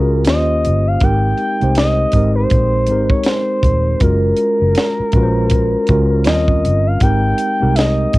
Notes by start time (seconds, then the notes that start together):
Already playing: C#2 G#3 C#4 F4 F#4 G#4 A#4
0.25 A#3 C#4 F4 G4 D#5, snare, closed hi-hat
0.29 D#2 C5
0.65 G1, closed hi-hat
0.87 F5
1.00 G#1 G#3 C4 D#4 G4 A#4 G5, kick, closed hi-hat
1.37 closed hi-hat
1.60 C2 G#3 C4 D#4 G4 C5, closed hi-hat
1.75 D#5, snare, closed hi-hat
2.12 G#1 G#3 C4 D#4, kick, closed hi-hat
2.16 G4 A#4
2.35 C5
2.50 A#1, kick, closed hi-hat
2.87 G#1 G#3 C4 D#4, closed hi-hat
2.91 G4 A#4
3.10 C#5, kick
3.24 C5, snare, closed hi-hat
3.63 D#1, kick, closed hi-hat
4.00 F#1 G#3 C#4 F4 F#4 A#4, kick, closed hi-hat
4.37 closed hi-hat
4.62 F#1
4.75 snare, closed hi-hat
5.00 muted fingered electric bass stroke
5.12 A#1 G#3 C#4 F4 F#4, kick, closed hi-hat
5.17 B4
5.23 C5
5.50 kick, closed hi-hat
5.87 C#2 G#3 C#4 F4 F#4, kick, closed hi-hat
5.92 A#4
6.24 D#2 G3 C4 C#4 F4 D#5, snare, closed hi-hat
6.29 A#4
6.48 kick
6.65 G1, closed hi-hat
6.87 F5
7.00 G#1 G#3 C4 D#4 G4 A#4 G5, kick, closed hi-hat
7.38 closed hi-hat
7.60 C2 G#3 C4 D#4 G4 A#4
7.75 D#5, snare, closed hi-hat
8.13 G#1 G#3 C4, kick, closed hi-hat